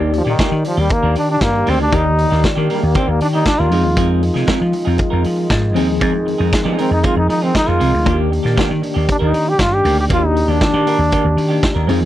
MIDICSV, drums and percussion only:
0, 0, Header, 1, 2, 480
1, 0, Start_track
1, 0, Key_signature, -3, "major"
1, 0, Tempo, 510638
1, 1811, Time_signature, 4, 2, 24, 8
1, 11328, End_track
2, 0, Start_track
2, 0, Title_t, "Drums"
2, 127, Note_on_c, 9, 46, 51
2, 221, Note_off_c, 9, 46, 0
2, 365, Note_on_c, 9, 36, 112
2, 365, Note_on_c, 9, 42, 63
2, 372, Note_on_c, 9, 38, 115
2, 459, Note_off_c, 9, 36, 0
2, 459, Note_off_c, 9, 42, 0
2, 466, Note_off_c, 9, 38, 0
2, 606, Note_on_c, 9, 46, 65
2, 700, Note_off_c, 9, 46, 0
2, 839, Note_on_c, 9, 42, 60
2, 850, Note_on_c, 9, 36, 122
2, 933, Note_off_c, 9, 42, 0
2, 944, Note_off_c, 9, 36, 0
2, 1085, Note_on_c, 9, 46, 64
2, 1179, Note_off_c, 9, 46, 0
2, 1325, Note_on_c, 9, 42, 61
2, 1326, Note_on_c, 9, 38, 104
2, 1327, Note_on_c, 9, 36, 107
2, 1419, Note_off_c, 9, 42, 0
2, 1420, Note_off_c, 9, 38, 0
2, 1421, Note_off_c, 9, 36, 0
2, 1566, Note_on_c, 9, 46, 79
2, 1660, Note_off_c, 9, 46, 0
2, 1810, Note_on_c, 9, 36, 118
2, 1811, Note_on_c, 9, 42, 74
2, 1904, Note_off_c, 9, 36, 0
2, 1905, Note_off_c, 9, 42, 0
2, 2054, Note_on_c, 9, 46, 55
2, 2148, Note_off_c, 9, 46, 0
2, 2178, Note_on_c, 9, 38, 31
2, 2272, Note_off_c, 9, 38, 0
2, 2293, Note_on_c, 9, 36, 102
2, 2293, Note_on_c, 9, 42, 61
2, 2300, Note_on_c, 9, 38, 109
2, 2387, Note_off_c, 9, 36, 0
2, 2387, Note_off_c, 9, 42, 0
2, 2394, Note_off_c, 9, 38, 0
2, 2536, Note_on_c, 9, 46, 59
2, 2630, Note_off_c, 9, 46, 0
2, 2767, Note_on_c, 9, 42, 64
2, 2776, Note_on_c, 9, 36, 119
2, 2861, Note_off_c, 9, 42, 0
2, 2870, Note_off_c, 9, 36, 0
2, 3013, Note_on_c, 9, 46, 65
2, 3107, Note_off_c, 9, 46, 0
2, 3250, Note_on_c, 9, 36, 101
2, 3251, Note_on_c, 9, 42, 61
2, 3252, Note_on_c, 9, 38, 107
2, 3344, Note_off_c, 9, 36, 0
2, 3345, Note_off_c, 9, 42, 0
2, 3346, Note_off_c, 9, 38, 0
2, 3492, Note_on_c, 9, 46, 72
2, 3586, Note_off_c, 9, 46, 0
2, 3727, Note_on_c, 9, 42, 78
2, 3730, Note_on_c, 9, 36, 112
2, 3821, Note_off_c, 9, 42, 0
2, 3824, Note_off_c, 9, 36, 0
2, 3973, Note_on_c, 9, 46, 54
2, 4067, Note_off_c, 9, 46, 0
2, 4091, Note_on_c, 9, 38, 34
2, 4185, Note_off_c, 9, 38, 0
2, 4205, Note_on_c, 9, 42, 61
2, 4210, Note_on_c, 9, 36, 96
2, 4211, Note_on_c, 9, 38, 109
2, 4299, Note_off_c, 9, 42, 0
2, 4304, Note_off_c, 9, 36, 0
2, 4305, Note_off_c, 9, 38, 0
2, 4446, Note_on_c, 9, 46, 58
2, 4540, Note_off_c, 9, 46, 0
2, 4681, Note_on_c, 9, 42, 62
2, 4693, Note_on_c, 9, 36, 109
2, 4775, Note_off_c, 9, 42, 0
2, 4787, Note_off_c, 9, 36, 0
2, 4929, Note_on_c, 9, 46, 62
2, 5023, Note_off_c, 9, 46, 0
2, 5171, Note_on_c, 9, 36, 106
2, 5172, Note_on_c, 9, 42, 66
2, 5173, Note_on_c, 9, 38, 118
2, 5265, Note_off_c, 9, 36, 0
2, 5266, Note_off_c, 9, 42, 0
2, 5267, Note_off_c, 9, 38, 0
2, 5412, Note_on_c, 9, 46, 78
2, 5506, Note_off_c, 9, 46, 0
2, 5651, Note_on_c, 9, 42, 69
2, 5652, Note_on_c, 9, 36, 110
2, 5745, Note_off_c, 9, 42, 0
2, 5746, Note_off_c, 9, 36, 0
2, 5900, Note_on_c, 9, 46, 51
2, 5994, Note_off_c, 9, 46, 0
2, 6135, Note_on_c, 9, 42, 65
2, 6136, Note_on_c, 9, 36, 110
2, 6142, Note_on_c, 9, 38, 114
2, 6229, Note_off_c, 9, 42, 0
2, 6230, Note_off_c, 9, 36, 0
2, 6236, Note_off_c, 9, 38, 0
2, 6378, Note_on_c, 9, 46, 63
2, 6472, Note_off_c, 9, 46, 0
2, 6612, Note_on_c, 9, 42, 66
2, 6619, Note_on_c, 9, 36, 118
2, 6706, Note_off_c, 9, 42, 0
2, 6713, Note_off_c, 9, 36, 0
2, 6861, Note_on_c, 9, 46, 64
2, 6955, Note_off_c, 9, 46, 0
2, 7096, Note_on_c, 9, 36, 95
2, 7098, Note_on_c, 9, 42, 61
2, 7100, Note_on_c, 9, 38, 103
2, 7190, Note_off_c, 9, 36, 0
2, 7192, Note_off_c, 9, 42, 0
2, 7194, Note_off_c, 9, 38, 0
2, 7338, Note_on_c, 9, 46, 69
2, 7432, Note_off_c, 9, 46, 0
2, 7578, Note_on_c, 9, 36, 114
2, 7580, Note_on_c, 9, 42, 78
2, 7672, Note_off_c, 9, 36, 0
2, 7674, Note_off_c, 9, 42, 0
2, 7829, Note_on_c, 9, 46, 48
2, 7923, Note_off_c, 9, 46, 0
2, 7947, Note_on_c, 9, 38, 33
2, 8041, Note_off_c, 9, 38, 0
2, 8060, Note_on_c, 9, 36, 110
2, 8065, Note_on_c, 9, 42, 62
2, 8072, Note_on_c, 9, 38, 106
2, 8154, Note_off_c, 9, 36, 0
2, 8159, Note_off_c, 9, 42, 0
2, 8166, Note_off_c, 9, 38, 0
2, 8303, Note_on_c, 9, 46, 59
2, 8397, Note_off_c, 9, 46, 0
2, 8540, Note_on_c, 9, 42, 69
2, 8542, Note_on_c, 9, 36, 109
2, 8634, Note_off_c, 9, 42, 0
2, 8636, Note_off_c, 9, 36, 0
2, 8780, Note_on_c, 9, 46, 60
2, 8874, Note_off_c, 9, 46, 0
2, 9016, Note_on_c, 9, 36, 102
2, 9019, Note_on_c, 9, 42, 66
2, 9021, Note_on_c, 9, 38, 120
2, 9110, Note_off_c, 9, 36, 0
2, 9113, Note_off_c, 9, 42, 0
2, 9115, Note_off_c, 9, 38, 0
2, 9258, Note_on_c, 9, 46, 85
2, 9352, Note_off_c, 9, 46, 0
2, 9495, Note_on_c, 9, 36, 118
2, 9498, Note_on_c, 9, 42, 84
2, 9589, Note_off_c, 9, 36, 0
2, 9592, Note_off_c, 9, 42, 0
2, 9743, Note_on_c, 9, 46, 59
2, 9837, Note_off_c, 9, 46, 0
2, 9972, Note_on_c, 9, 42, 67
2, 9974, Note_on_c, 9, 36, 106
2, 9979, Note_on_c, 9, 38, 116
2, 10066, Note_off_c, 9, 42, 0
2, 10068, Note_off_c, 9, 36, 0
2, 10073, Note_off_c, 9, 38, 0
2, 10216, Note_on_c, 9, 46, 65
2, 10310, Note_off_c, 9, 46, 0
2, 10451, Note_on_c, 9, 42, 66
2, 10458, Note_on_c, 9, 36, 107
2, 10545, Note_off_c, 9, 42, 0
2, 10552, Note_off_c, 9, 36, 0
2, 10697, Note_on_c, 9, 46, 70
2, 10791, Note_off_c, 9, 46, 0
2, 10932, Note_on_c, 9, 36, 108
2, 10933, Note_on_c, 9, 42, 61
2, 10934, Note_on_c, 9, 38, 120
2, 11026, Note_off_c, 9, 36, 0
2, 11027, Note_off_c, 9, 42, 0
2, 11028, Note_off_c, 9, 38, 0
2, 11175, Note_on_c, 9, 46, 75
2, 11269, Note_off_c, 9, 46, 0
2, 11328, End_track
0, 0, End_of_file